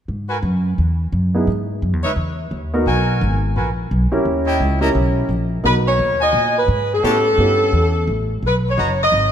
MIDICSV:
0, 0, Header, 1, 6, 480
1, 0, Start_track
1, 0, Key_signature, 5, "minor"
1, 0, Tempo, 347826
1, 115, Time_signature, 4, 2, 24, 8
1, 12860, End_track
2, 0, Start_track
2, 0, Title_t, "Saxophone section"
2, 0, Program_c, 0, 65
2, 7806, Note_on_c, 0, 71, 95
2, 7937, Note_off_c, 0, 71, 0
2, 8112, Note_on_c, 0, 73, 73
2, 8548, Note_off_c, 0, 73, 0
2, 8597, Note_on_c, 0, 75, 81
2, 9031, Note_off_c, 0, 75, 0
2, 9081, Note_on_c, 0, 71, 72
2, 9546, Note_off_c, 0, 71, 0
2, 9571, Note_on_c, 0, 69, 86
2, 11416, Note_off_c, 0, 69, 0
2, 11683, Note_on_c, 0, 71, 80
2, 11806, Note_off_c, 0, 71, 0
2, 11995, Note_on_c, 0, 73, 67
2, 12412, Note_off_c, 0, 73, 0
2, 12464, Note_on_c, 0, 75, 91
2, 12860, Note_off_c, 0, 75, 0
2, 12860, End_track
3, 0, Start_track
3, 0, Title_t, "Trumpet section"
3, 0, Program_c, 1, 61
3, 401, Note_on_c, 1, 66, 59
3, 403, Note_on_c, 1, 70, 53
3, 405, Note_on_c, 1, 80, 64
3, 406, Note_on_c, 1, 71, 61
3, 529, Note_off_c, 1, 66, 0
3, 530, Note_off_c, 1, 70, 0
3, 531, Note_off_c, 1, 80, 0
3, 532, Note_off_c, 1, 71, 0
3, 2811, Note_on_c, 1, 71, 65
3, 2812, Note_on_c, 1, 73, 71
3, 2815, Note_on_c, 1, 63, 70
3, 2818, Note_on_c, 1, 76, 79
3, 2935, Note_off_c, 1, 71, 0
3, 2935, Note_off_c, 1, 73, 0
3, 2937, Note_off_c, 1, 63, 0
3, 2939, Note_off_c, 1, 76, 0
3, 3960, Note_on_c, 1, 66, 76
3, 3960, Note_on_c, 1, 80, 79
3, 3966, Note_on_c, 1, 70, 69
3, 4675, Note_off_c, 1, 66, 0
3, 4675, Note_off_c, 1, 80, 0
3, 4678, Note_off_c, 1, 70, 0
3, 4916, Note_on_c, 1, 70, 54
3, 4917, Note_on_c, 1, 66, 62
3, 4917, Note_on_c, 1, 71, 60
3, 4919, Note_on_c, 1, 80, 63
3, 5116, Note_off_c, 1, 70, 0
3, 5117, Note_off_c, 1, 66, 0
3, 5117, Note_off_c, 1, 71, 0
3, 5118, Note_off_c, 1, 80, 0
3, 6165, Note_on_c, 1, 73, 68
3, 6166, Note_on_c, 1, 64, 75
3, 6168, Note_on_c, 1, 79, 78
3, 6170, Note_on_c, 1, 75, 64
3, 6618, Note_off_c, 1, 73, 0
3, 6619, Note_off_c, 1, 64, 0
3, 6620, Note_off_c, 1, 79, 0
3, 6621, Note_off_c, 1, 75, 0
3, 6645, Note_on_c, 1, 64, 71
3, 6647, Note_on_c, 1, 75, 63
3, 6648, Note_on_c, 1, 73, 63
3, 6648, Note_on_c, 1, 82, 80
3, 6770, Note_off_c, 1, 64, 0
3, 6772, Note_off_c, 1, 73, 0
3, 6772, Note_off_c, 1, 75, 0
3, 6772, Note_off_c, 1, 82, 0
3, 8559, Note_on_c, 1, 66, 63
3, 8559, Note_on_c, 1, 80, 83
3, 8564, Note_on_c, 1, 75, 62
3, 9191, Note_off_c, 1, 66, 0
3, 9191, Note_off_c, 1, 80, 0
3, 9193, Note_off_c, 1, 75, 0
3, 9711, Note_on_c, 1, 81, 83
3, 9714, Note_on_c, 1, 67, 80
3, 9715, Note_on_c, 1, 71, 67
3, 9715, Note_on_c, 1, 73, 67
3, 9912, Note_off_c, 1, 81, 0
3, 9914, Note_off_c, 1, 67, 0
3, 9915, Note_off_c, 1, 71, 0
3, 9915, Note_off_c, 1, 73, 0
3, 12115, Note_on_c, 1, 71, 58
3, 12118, Note_on_c, 1, 75, 62
3, 12118, Note_on_c, 1, 82, 73
3, 12121, Note_on_c, 1, 66, 63
3, 12315, Note_off_c, 1, 71, 0
3, 12317, Note_off_c, 1, 75, 0
3, 12317, Note_off_c, 1, 82, 0
3, 12319, Note_off_c, 1, 66, 0
3, 12860, End_track
4, 0, Start_track
4, 0, Title_t, "Grand piano"
4, 0, Program_c, 2, 0
4, 1857, Note_on_c, 2, 59, 46
4, 1862, Note_on_c, 2, 63, 39
4, 1867, Note_on_c, 2, 64, 41
4, 1870, Note_on_c, 2, 68, 51
4, 2019, Note_off_c, 2, 59, 0
4, 2022, Note_off_c, 2, 63, 0
4, 2024, Note_off_c, 2, 64, 0
4, 2025, Note_off_c, 2, 68, 0
4, 3776, Note_on_c, 2, 59, 58
4, 3781, Note_on_c, 2, 63, 52
4, 3781, Note_on_c, 2, 66, 53
4, 3784, Note_on_c, 2, 70, 62
4, 4400, Note_off_c, 2, 59, 0
4, 4402, Note_off_c, 2, 63, 0
4, 4402, Note_off_c, 2, 66, 0
4, 4404, Note_off_c, 2, 70, 0
4, 5681, Note_on_c, 2, 61, 58
4, 5682, Note_on_c, 2, 64, 57
4, 5688, Note_on_c, 2, 67, 52
4, 5696, Note_on_c, 2, 70, 56
4, 6312, Note_off_c, 2, 61, 0
4, 6313, Note_off_c, 2, 64, 0
4, 6315, Note_off_c, 2, 67, 0
4, 6320, Note_off_c, 2, 70, 0
4, 6632, Note_on_c, 2, 61, 58
4, 6639, Note_on_c, 2, 64, 51
4, 6639, Note_on_c, 2, 67, 47
4, 6650, Note_on_c, 2, 70, 55
4, 7267, Note_off_c, 2, 61, 0
4, 7271, Note_off_c, 2, 64, 0
4, 7271, Note_off_c, 2, 67, 0
4, 7276, Note_off_c, 2, 70, 0
4, 7778, Note_on_c, 2, 59, 52
4, 7778, Note_on_c, 2, 63, 43
4, 7786, Note_on_c, 2, 70, 50
4, 7787, Note_on_c, 2, 66, 44
4, 9116, Note_off_c, 2, 59, 0
4, 9116, Note_off_c, 2, 63, 0
4, 9120, Note_off_c, 2, 66, 0
4, 9120, Note_off_c, 2, 70, 0
4, 9706, Note_on_c, 2, 59, 47
4, 9710, Note_on_c, 2, 61, 44
4, 9713, Note_on_c, 2, 64, 41
4, 9721, Note_on_c, 2, 67, 51
4, 9977, Note_off_c, 2, 59, 0
4, 9979, Note_off_c, 2, 61, 0
4, 9981, Note_off_c, 2, 64, 0
4, 9984, Note_off_c, 2, 67, 0
4, 10198, Note_on_c, 2, 59, 48
4, 10201, Note_on_c, 2, 61, 39
4, 10206, Note_on_c, 2, 64, 40
4, 10210, Note_on_c, 2, 67, 48
4, 10914, Note_off_c, 2, 59, 0
4, 10915, Note_off_c, 2, 61, 0
4, 10917, Note_off_c, 2, 64, 0
4, 10919, Note_off_c, 2, 67, 0
4, 12860, End_track
5, 0, Start_track
5, 0, Title_t, "Upright bass"
5, 0, Program_c, 3, 32
5, 115, Note_on_c, 3, 44, 63
5, 580, Note_off_c, 3, 44, 0
5, 587, Note_on_c, 3, 42, 75
5, 1057, Note_off_c, 3, 42, 0
5, 1078, Note_on_c, 3, 40, 67
5, 1542, Note_off_c, 3, 40, 0
5, 1551, Note_on_c, 3, 42, 78
5, 2019, Note_off_c, 3, 42, 0
5, 2030, Note_on_c, 3, 44, 66
5, 2498, Note_off_c, 3, 44, 0
5, 2515, Note_on_c, 3, 42, 73
5, 2666, Note_off_c, 3, 42, 0
5, 2666, Note_on_c, 3, 40, 51
5, 2818, Note_off_c, 3, 40, 0
5, 2826, Note_on_c, 3, 37, 53
5, 2970, Note_off_c, 3, 37, 0
5, 2978, Note_on_c, 3, 40, 72
5, 3452, Note_off_c, 3, 40, 0
5, 3465, Note_on_c, 3, 39, 75
5, 3935, Note_off_c, 3, 39, 0
5, 3946, Note_on_c, 3, 35, 67
5, 4416, Note_off_c, 3, 35, 0
5, 4434, Note_on_c, 3, 32, 80
5, 4899, Note_off_c, 3, 32, 0
5, 4916, Note_on_c, 3, 34, 64
5, 5380, Note_off_c, 3, 34, 0
5, 5397, Note_on_c, 3, 35, 80
5, 5672, Note_off_c, 3, 35, 0
5, 5869, Note_on_c, 3, 39, 66
5, 6337, Note_off_c, 3, 39, 0
5, 6349, Note_on_c, 3, 37, 73
5, 6817, Note_off_c, 3, 37, 0
5, 6829, Note_on_c, 3, 35, 74
5, 7286, Note_off_c, 3, 35, 0
5, 7295, Note_on_c, 3, 34, 71
5, 7769, Note_off_c, 3, 34, 0
5, 7780, Note_on_c, 3, 35, 67
5, 8252, Note_off_c, 3, 35, 0
5, 8264, Note_on_c, 3, 39, 74
5, 8725, Note_off_c, 3, 39, 0
5, 8734, Note_on_c, 3, 46, 70
5, 9208, Note_off_c, 3, 46, 0
5, 9222, Note_on_c, 3, 44, 82
5, 9693, Note_off_c, 3, 44, 0
5, 9707, Note_on_c, 3, 45, 68
5, 10176, Note_off_c, 3, 45, 0
5, 10182, Note_on_c, 3, 43, 76
5, 10653, Note_off_c, 3, 43, 0
5, 10663, Note_on_c, 3, 40, 79
5, 11134, Note_off_c, 3, 40, 0
5, 11144, Note_on_c, 3, 33, 85
5, 11614, Note_off_c, 3, 33, 0
5, 11627, Note_on_c, 3, 35, 74
5, 12096, Note_off_c, 3, 35, 0
5, 12112, Note_on_c, 3, 30, 71
5, 12578, Note_off_c, 3, 30, 0
5, 12585, Note_on_c, 3, 32, 77
5, 12860, Note_off_c, 3, 32, 0
5, 12860, End_track
6, 0, Start_track
6, 0, Title_t, "Muted upright bass strokes"
6, 5688, Note_on_c, 9, 29, 35
6, 5826, Note_off_c, 9, 29, 0
6, 12860, End_track
0, 0, End_of_file